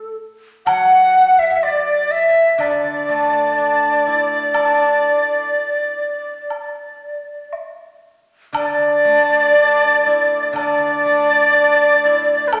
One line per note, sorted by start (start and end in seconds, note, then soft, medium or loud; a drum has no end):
0.00 0.14 A4 medium
0.00 0.17 A4 medium
0.66 3.57 F#3 medium
0.66 1.40 F#5 loud
0.66 1.41 F#5 loud
0.66 high woodblock medium
1.39 1.64 E5 medium
1.39 1.66 E5 medium
1.63 2.13 D5 medium
1.63 low woodblock soft
2.11 2.62 E5 medium
2.58 5.51 D3 medium
2.58 7.53 D5 medium
2.58 high woodblock soft
3.09 5.03 A3 soft
3.57 5.52 D4 soft
4.07 6.02 E4 soft
4.54 6.52 A4 soft
4.54 high woodblock medium
6.50 high woodblock soft
7.53 low woodblock soft
8.53 10.52 D3 medium
8.53 10.52 D5 medium
8.53 high woodblock medium
8.58 10.53 D5 loud
9.05 11.04 A3 soft
9.55 11.53 D4 soft
10.06 12.03 E4 soft
10.53 12.60 D3 medium
10.53 12.49 D5 medium
10.53 high woodblock medium
10.57 12.55 D5 medium
11.05 12.60 A3 soft
11.54 12.60 D4 soft
12.05 12.60 E4 soft
12.48 12.55 B4 soft
12.53 12.60 A4 medium
12.53 high woodblock medium